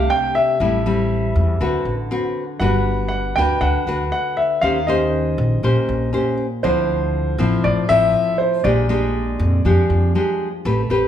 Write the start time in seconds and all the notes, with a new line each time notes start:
Already playing: C3 A3 D4 G4
0.10 G5
0.35 E5
0.60 A1 A2 G3 C4 E4
0.86 G3 C4 E4
1.36 E2
1.61 D2 D3 C4 F#4 B4
1.85 A1
2.11 C4 F#4 B4
2.60 G1 G3 D4 F#4 B4 F#5
3.08 F#5
3.36 D2 D4 F#4 B4 G5
3.61 D2 D3 F#5
3.87 D2 D4 F#4 B4
4.12 F#5
4.37 E5
4.61 D#2 D#3 C#4 G4 C5 F5
4.87 C#4 G4 C5 D#5
5.38 A#1
5.63 A#1 A#2 C#4 G4 C5
5.89 A#1
6.13 C#4 G4 C5
6.63 D2 D3 F3 C4 E4 C5
7.38 A1 F3 C4 E4
7.64 A1 A2 D5
7.89 A1 F3 C4 E4 E5
8.38 C5
8.64 A#1 A#2 G#3 D4 G4 D5
8.89 G#3 D4 G4
9.39 F2
9.65 F2 F3 G#3 D4 G4
9.90 F2
10.15 G#3 D4 G4
10.65 A1 A3 C4 G4 B4
10.90 A1 C4 G4 B4